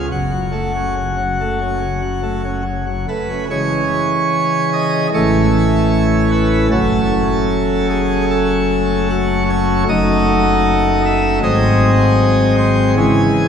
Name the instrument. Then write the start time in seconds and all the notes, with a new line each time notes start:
pipe organ
0.11 F#1 F#2 F#4
0.31 F#3
0.52 A3
0.75 C#4
0.97 C#3
1.18 F#3
1.40 A3
1.61 C#4
1.81 C#3
2.02 F#3
2.23 A3
2.44 C#4
2.65 C#3
2.87 F#3
3.09 A3 B4
3.29 C#4
3.51 C#3 E3 G#3 C#4 C#5
4.73 D#5
5.14 A1 A2 E3 A3 C#4 C#5
6.32 B4
6.71 F#1 F#2 F#3 A3 C#4 A4
7.90 G#4
8.30 A4
9.10 F#4
9.50 C#5
9.89 F#1 F#2 F#3 A3 D#4 D#5
11.06 E5
11.43 G#1 G#2 F#3 G#3 C4 D#5
12.58 C5
12.97 C#3 E3 G#3 C#4 G#4